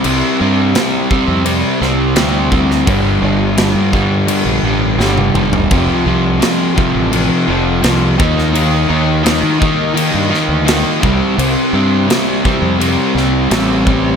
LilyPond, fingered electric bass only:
\new Staff \with { instrumentName = "Fingered electric bass" } { \clef bass \time 4/4 \key c \dorian \tempo 4 = 85 c,16 r16 g,8 r8. f,8 r16 c,8 d,4 | g,,8 g,,8. g,4 bes,,16 a,,8 g,,8 f,,8 | f,,16 r16 c,8 r8. a,,8 r16 f,,8 c,8 ees,8~ | ees,8 ees,8. ees4 g,16 r16 d,8 r16 c,16 r16 |
c,16 r16 g,8 r8. f,8 r16 c,8 a,,4 | }